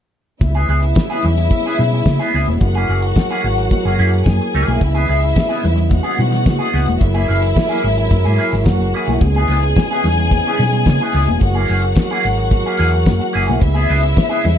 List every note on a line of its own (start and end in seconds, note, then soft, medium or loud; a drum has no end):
0.41 0.64 C#2 loud
0.41 2.59 C#3 medium
0.41 2.59 G#3 medium
0.41 2.59 B3 medium
0.41 2.57 E4 medium
0.41 2.59 E4 medium
0.41 2.57 E5 medium
0.41 muted clean electric guitar stroke soft
0.41 kick loud
0.41 closed hi-hat medium
0.41 muted conga soft
0.55 0.67 B3 medium
0.55 0.68 E4 medium
0.55 0.69 G#4 medium
0.55 closed hi-hat soft
0.69 0.92 C#2 medium
0.69 0.81 B3 medium
0.69 0.82 E4 medium
0.69 0.81 G#4 medium
0.82 muted clean electric guitar stroke soft
0.82 closed hi-hat soft
0.95 muted clean electric guitar stroke soft
0.95 kick loud
0.95 snare loud
0.95 closed hi-hat medium
0.95 high conga medium
1.10 1.23 B3 medium
1.10 1.24 E4 medium
1.10 1.24 G#4 medium
1.10 closed hi-hat medium
1.23 1.47 E2 medium
1.23 muted clean electric guitar stroke soft
1.23 low conga medium
1.38 muted clean electric guitar stroke soft
1.38 closed hi-hat medium
1.51 muted clean electric guitar stroke soft
1.51 kick loud
1.51 closed hi-hat medium
1.51 muted conga medium
1.63 1.78 E4 medium
1.63 1.79 G#4 medium
1.63 closed hi-hat soft
1.68 1.78 B3 medium
1.79 2.02 B2 medium
1.79 muted clean electric guitar stroke soft
1.79 low conga medium
1.92 muted clean electric guitar stroke soft
1.92 closed hi-hat soft
2.06 2.18 C#3 medium
2.06 muted clean electric guitar stroke soft
2.06 kick loud
2.06 snare loud
2.06 closed hi-hat medium
2.06 high conga medium
2.19 2.33 B3 medium
2.19 2.34 E4 medium
2.19 2.35 G#4 medium
2.19 closed hi-hat soft
2.34 2.46 C#2 medium
2.34 2.47 B3 medium
2.34 2.47 E4 medium
2.34 2.47 G#4 medium
2.46 2.59 E1 medium
2.46 muted clean electric guitar stroke soft
2.46 closed hi-hat soft
2.46 high conga medium
2.60 2.84 F#1 medium
2.60 14.58 E3 medium
2.60 4.78 F#3 medium
2.60 4.23 F#4 medium
2.60 4.79 G#4 medium
2.60 4.79 A#4 medium
2.60 4.23 F#5 medium
2.60 muted clean electric guitar stroke soft
2.60 kick loud
2.60 closed hi-hat medium
2.60 muted conga medium
2.75 2.88 A#3 medium
2.75 2.89 E4 medium
2.75 2.89 G#4 medium
2.75 closed hi-hat soft
2.89 3.12 F#1 medium
2.89 3.02 A#3 medium
2.89 3.02 E4 medium
2.89 3.02 G#4 medium
3.02 muted clean electric guitar stroke soft
3.02 closed hi-hat soft
3.16 muted clean electric guitar stroke soft
3.16 kick loud
3.16 snare loud
3.16 closed hi-hat medium
3.16 high conga medium
3.30 3.43 A#3 medium
3.30 3.44 E4 medium
3.30 3.44 G#4 medium
3.30 closed hi-hat soft
3.44 3.67 G#1 medium
3.44 muted clean electric guitar stroke soft
3.58 muted clean electric guitar stroke soft
3.58 closed hi-hat medium
3.71 muted clean electric guitar stroke soft
3.71 kick loud
3.71 closed hi-hat medium
3.71 muted conga medium
3.83 3.97 F#1 medium
3.83 3.98 A#3 soft
3.83 3.98 E4 medium
3.83 3.98 G#4 medium
3.83 closed hi-hat soft
3.99 4.22 F#2 medium
3.99 4.15 A#3 medium
3.99 4.12 E4 medium
3.99 4.11 G#4 medium
4.12 muted clean electric guitar stroke soft
4.12 closed hi-hat soft
4.26 4.38 F#2 medium
4.26 4.80 G#4 medium
4.26 4.80 G#5 medium
4.26 muted clean electric guitar stroke soft
4.26 kick loud
4.26 snare loud
4.26 closed hi-hat medium
4.26 high conga medium
4.41 muted clean electric guitar stroke soft
4.41 closed hi-hat soft
4.54 4.66 C#2 medium
4.54 4.68 A#3 medium
4.54 4.67 E4 medium
4.54 4.66 G#4 medium
4.66 4.79 B1 medium
4.66 4.81 A#3 medium
4.66 4.81 E4 medium
4.66 4.80 G#4 medium
4.66 closed hi-hat soft
4.66 high conga medium
4.81 5.05 C#2 loud
4.81 7.00 C#3 medium
4.81 7.00 G#3 medium
4.81 7.00 B3 medium
4.81 5.90 E4 medium
4.81 5.90 E5 medium
4.81 muted clean electric guitar stroke soft
4.81 kick loud
4.81 closed hi-hat medium
4.81 muted conga soft
4.95 5.07 B3 medium
4.95 5.08 E4 medium
4.95 5.08 G#4 medium
4.95 closed hi-hat soft
5.08 5.32 C#2 medium
5.08 5.21 B3 medium
5.08 5.22 E4 medium
5.08 5.22 G#4 medium
5.23 muted clean electric guitar stroke soft
5.23 closed hi-hat soft
5.36 muted clean electric guitar stroke soft
5.36 kick loud
5.36 snare loud
5.36 closed hi-hat medium
5.36 high conga medium
5.49 5.62 B3 medium
5.49 5.62 E4 medium
5.49 5.63 G#4 medium
5.49 closed hi-hat soft
5.63 5.99 E2 medium
5.63 muted clean electric guitar stroke soft
5.63 low conga medium
5.76 muted clean electric guitar stroke soft
5.76 closed hi-hat soft
5.89 6.99 F#4 medium
5.89 6.99 F#5 medium
5.89 muted clean electric guitar stroke soft
5.89 kick loud
5.89 closed hi-hat medium
5.89 muted conga medium
6.03 6.17 B3 medium
6.03 6.18 E4 medium
6.03 6.19 G#4 medium
6.03 closed hi-hat soft
6.18 6.46 B2 medium
6.18 muted clean electric guitar stroke soft
6.18 low conga medium
6.31 muted clean electric guitar stroke soft
6.31 snare soft
6.31 closed hi-hat soft
6.46 6.58 C#3 medium
6.46 muted clean electric guitar stroke soft
6.46 kick loud
6.46 snare loud
6.46 closed hi-hat medium
6.46 high conga medium
6.59 6.72 B3 medium
6.59 6.72 E4 medium
6.59 6.73 G#4 medium
6.59 closed hi-hat soft
6.73 6.86 C#2 medium
6.73 6.87 B3 medium
6.73 6.86 E4 medium
6.73 6.85 G#4 medium
6.86 6.99 E1 medium
6.86 muted clean electric guitar stroke soft
6.86 closed hi-hat soft
6.86 high conga medium
7.00 7.25 F#1 loud
7.00 9.20 F#3 medium
7.00 8.63 E4 medium
7.00 9.20 G#4 medium
7.00 9.20 A#4 medium
7.00 8.63 E5 medium
7.00 muted clean electric guitar stroke soft
7.00 kick medium
7.00 closed hi-hat medium
7.00 muted conga medium
7.14 7.27 A#3 medium
7.14 7.28 E4 medium
7.14 7.29 G#4 medium
7.14 closed hi-hat soft
7.28 7.52 F#1 medium
7.28 7.42 A#3 medium
7.28 7.42 E4 medium
7.28 7.41 G#4 medium
7.42 muted clean electric guitar stroke soft
7.42 closed hi-hat soft
7.56 muted clean electric guitar stroke soft
7.56 kick loud
7.56 snare loud
7.56 closed hi-hat medium
7.56 high conga medium
7.69 7.83 A#3 medium
7.69 7.83 E4 medium
7.69 7.84 G#4 medium
7.69 closed hi-hat medium
7.84 8.07 G#1 medium
7.84 muted clean electric guitar stroke soft
7.98 muted clean electric guitar stroke soft
7.98 closed hi-hat medium
8.11 8.23 F#2 loud
8.11 muted clean electric guitar stroke soft
8.11 kick loud
8.11 closed hi-hat medium
8.11 muted conga medium
8.24 8.37 G#2 medium
8.24 8.37 A#3 medium
8.24 8.38 E4 medium
8.24 8.38 G#4 medium
8.24 closed hi-hat soft
8.38 8.55 A#3 medium
8.38 8.53 E4 medium
8.38 8.52 G#4 medium
8.52 8.64 G#1 medium
8.52 muted clean electric guitar stroke soft
8.52 snare soft
8.52 closed hi-hat soft
8.65 8.78 F#2 medium
8.65 9.20 F#4 medium
8.65 9.20 F#5 medium
8.65 muted clean electric guitar stroke soft
8.65 kick loud
8.65 snare loud
8.65 closed hi-hat medium
8.65 high conga medium
8.80 8.92 F#1 medium
8.80 muted clean electric guitar stroke soft
8.80 closed hi-hat soft
8.94 9.09 A#3 medium
8.94 9.09 E4 medium
8.94 9.08 G#4 medium
9.06 9.19 B1 medium
9.06 9.22 E4 medium
9.06 9.21 G#4 medium
9.06 closed hi-hat soft
9.06 high conga medium
9.10 9.22 A#3 soft
9.21 9.45 C#2 loud
9.21 11.40 C#3 medium
9.21 11.40 G#3 medium
9.21 11.40 B3 medium
9.21 11.38 G#4 medium
9.21 11.38 G#5 loud
9.21 muted clean electric guitar stroke soft
9.21 kick loud
9.21 closed hi-hat medium
9.21 muted conga medium
9.35 9.49 B3 medium
9.35 9.49 E4 medium
9.35 9.50 G#4 medium
9.35 closed hi-hat soft
9.48 9.72 C#2 medium
9.48 9.63 B3 medium
9.48 9.63 E4 soft
9.48 9.63 G#4 medium
9.48 open hi-hat medium
9.48 muted conga soft
9.63 muted clean electric guitar stroke soft
9.63 closed hi-hat soft
9.76 muted clean electric guitar stroke soft
9.76 kick loud
9.76 snare loud
9.76 closed hi-hat medium
9.76 high conga medium
9.91 10.04 B3 medium
9.91 10.05 E4 medium
9.91 10.05 G#4 medium
9.91 closed hi-hat medium
10.03 10.39 E2 medium
10.03 muted clean electric guitar stroke soft
10.03 open hi-hat medium
10.03 low conga medium
10.18 muted clean electric guitar stroke soft
10.18 closed hi-hat soft
10.31 muted clean electric guitar stroke soft
10.31 kick loud
10.31 closed hi-hat medium
10.31 muted conga medium
10.44 10.60 E4 medium
10.44 10.60 G#4 medium
10.44 closed hi-hat soft
10.48 10.59 B3 medium
10.58 10.86 B2 medium
10.58 open hi-hat medium
10.58 low conga medium
10.72 muted clean electric guitar stroke soft
10.72 closed hi-hat soft
10.86 10.98 C#3 medium
10.86 muted clean electric guitar stroke soft
10.86 kick loud
10.86 snare loud
10.86 closed hi-hat medium
10.86 high conga medium
11.01 11.14 B3 medium
11.01 11.15 E4 medium
11.01 11.16 G#4 medium
11.01 closed hi-hat soft
11.12 11.26 C#2 medium
11.12 11.28 B3 medium
11.12 11.28 E4 medium
11.12 open hi-hat medium
11.17 11.27 G#4 medium
11.26 11.40 E1 medium
11.26 muted clean electric guitar stroke soft
11.26 closed hi-hat soft
11.26 high conga medium
11.41 11.65 F#1 loud
11.41 13.60 F#3 medium
11.41 13.58 F#4 medium
11.41 13.60 G#4 medium
11.41 13.60 A#4 medium
11.41 13.58 F#5 loud
11.41 muted clean electric guitar stroke soft
11.41 kick loud
11.41 closed hi-hat medium
11.41 muted conga medium
11.54 11.67 A#3 medium
11.54 11.69 E4 medium
11.54 11.69 G#4 medium
11.54 closed hi-hat soft
11.67 11.93 F#1 medium
11.67 11.82 A#3 soft
11.67 11.82 E4 soft
11.67 11.81 G#4 medium
11.67 open hi-hat medium
11.67 muted conga soft
11.82 muted clean electric guitar stroke soft
11.82 closed hi-hat soft
11.95 muted clean electric guitar stroke soft
11.95 kick loud
11.95 snare loud
11.95 closed hi-hat medium
11.95 high conga medium
12.10 12.23 A#3 medium
12.10 12.24 E4 medium
12.10 12.25 G#4 medium
12.10 closed hi-hat medium
12.23 12.60 G#1 medium
12.23 muted clean electric guitar stroke soft
12.23 open hi-hat medium
12.38 muted clean electric guitar stroke soft
12.38 closed hi-hat soft
12.51 muted clean electric guitar stroke soft
12.51 kick loud
12.51 closed hi-hat medium
12.51 muted conga medium
12.63 12.78 E4 medium
12.63 12.79 G#4 medium
12.63 closed hi-hat soft
12.67 12.77 A#3 medium
12.78 13.07 E2 medium
12.78 12.95 A#3 medium
12.78 12.92 E4 medium
12.78 12.91 G#4 medium
12.78 open hi-hat medium
12.92 muted clean electric guitar stroke soft
12.92 closed hi-hat soft
13.06 13.19 F#2 medium
13.06 muted clean electric guitar stroke soft
13.06 kick loud
13.06 snare loud
13.06 closed hi-hat medium
13.06 high conga medium
13.20 muted clean electric guitar stroke soft
13.20 closed hi-hat soft
13.33 13.47 F#1 medium
13.33 13.48 A#3 medium
13.33 13.47 E4 medium
13.33 13.46 G#4 medium
13.33 open hi-hat medium
13.47 13.61 B1 medium
13.47 13.61 A#3 medium
13.47 13.61 E4 soft
13.47 13.61 G#4 medium
13.47 closed hi-hat soft
13.47 high conga medium
13.61 13.85 C#2 loud
13.61 14.58 C#3 medium
13.61 14.58 G#3 medium
13.61 14.58 B3 medium
13.61 14.58 E4 medium
13.61 14.58 E5 loud
13.61 muted clean electric guitar stroke soft
13.61 kick loud
13.61 closed hi-hat medium
13.61 muted conga medium
13.74 13.88 B3 medium
13.74 13.89 E4 medium
13.74 13.89 G#4 medium
13.74 closed hi-hat soft
13.89 14.13 C#2 medium
13.89 14.02 B3 medium
13.89 14.03 E4 medium
13.89 14.02 G#4 medium
13.89 open hi-hat medium
13.89 muted conga soft
14.03 muted clean electric guitar stroke soft
14.03 closed hi-hat soft
14.16 muted clean electric guitar stroke medium
14.16 kick loud
14.16 snare loud
14.16 closed hi-hat medium
14.16 high conga medium
14.29 14.43 B3 medium
14.29 14.43 E4 medium
14.29 14.44 G#4 medium
14.29 closed hi-hat medium
14.44 14.58 E2 medium
14.44 muted clean electric guitar stroke soft
14.44 open hi-hat medium
14.44 low conga medium